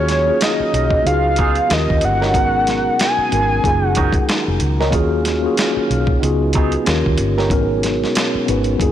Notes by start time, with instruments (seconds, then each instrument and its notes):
Already playing: fingered electric bass D#2, tonewheel organ D#3 F#3 C#4 F5, tine electric piano A#3 C#4 F4 F#4 G#4, analog synth lead C#5
0.09 snare, closed hi-hat
0.26 tine electric piano A#3 C#4 F4 F#4
0.30 tine electric piano G#4
0.41 analog synth lead D#5, finger snap, snare, closed hi-hat
0.60 muted fingered electric bass stroke
0.73 fingered electric bass B1, closed hi-hat
0.91 kick
1.03 fingered electric bass C#2, tonewheel organ C#3 B3 D#4, tine electric piano B3 D#4 F4 F#4 G#4, analog synth lead F5, closed hi-hat
1.36 clean electric guitar F#3 B3 D#4 G#4, kick, closed hi-hat
1.55 closed hi-hat
1.68 fingered electric bass D#2, tonewheel organ C#3 G3 A#4, tine electric piano A#3 C#4 F4 F#4, finger snap, snare, closed hi-hat
1.72 tine electric piano A#4, analog synth lead D#5
1.77 tine electric piano G4
1.90 fingered electric bass D#2, kick
2.01 fingered electric bass G1, analog synth lead F#5, closed hi-hat
2.22 clean electric guitar G3 C#4 D#4 A#4, snare
2.32 fingered electric bass G#1, tonewheel organ B2 F#3 G#3, tine electric piano B3 C#4 D#4 F#4, kick, closed hi-hat
2.36 tine electric piano A#4
2.67 snare, closed hi-hat
2.99 analog synth lead G#5, finger snap, snare, closed hi-hat
3.18 muted fingered electric bass stroke
3.29 fingered electric bass G#1, tine electric piano B3 C#4 D#4 F#4, closed hi-hat
3.34 tine electric piano A#4
3.61 fingered electric bass F#1, tonewheel organ D#3 G#3, tine electric piano A#3 C#4 D#4 F4, kick, closed hi-hat
3.66 tine electric piano G#4
3.86 analog synth lead F#5
3.95 clean electric guitar G#3 C#4 D#4 A#4, kick, closed hi-hat
4.13 kick, closed hi-hat
4.29 finger snap, snare, closed hi-hat
4.48 fingered electric bass F1
4.60 fingered electric bass C#2, closed hi-hat
4.80 clean electric guitar G#3 C#4 D#4 A#4, snare
4.91 fingered electric bass D#2, tonewheel organ F#3 C#4 F5, tine electric piano A#3 C#4 F4 F#4, kick, closed hi-hat
4.95 tine electric piano G#4
5.25 snare, closed hi-hat
5.42 tine electric piano A#3 C#4 F4 F#4 G#4
5.57 finger snap, snare, closed hi-hat
5.77 muted fingered electric bass stroke
5.90 fingered electric bass B1, closed hi-hat
6.07 kick
6.20 fingered electric bass C#2, tonewheel organ C#3 B3 D#4, tine electric piano B3 D#4 F4 F#4, closed hi-hat
6.24 tine electric piano G#4
6.53 clean electric guitar F#3 B3 D#4, kick, closed hi-hat
6.57 clean electric guitar G#4
6.72 closed hi-hat
6.84 fingered electric bass D#2, tonewheel organ G3 C#4 D#4, tine electric piano A#3 C#4 F4 G4, finger snap, snare, closed hi-hat
6.88 tine electric piano A#4
7.06 fingered electric bass D#2, kick
7.18 fingered electric bass G1, closed hi-hat
7.38 clean electric guitar A#3 C#4 G4 A#4, snare
7.49 fingered electric bass G#1, tonewheel organ B2 F#3 G#3, tine electric piano B3 C#4 D#4 F#4, kick, closed hi-hat
7.53 tine electric piano A#4
7.83 snare, closed hi-hat
8.04 snare
8.15 finger snap, snare, closed hi-hat
8.35 muted fingered electric bass stroke
8.46 fingered electric bass G#1, tine electric piano B3 C#4 D#4 F#4, closed hi-hat
8.50 tine electric piano B4
8.64 closed hi-hat
8.78 fingered electric bass F#1, tonewheel organ D#3 A#3, tine electric piano A#3 C#4 D#4 F4, kick, closed hi-hat
8.82 tine electric piano G#4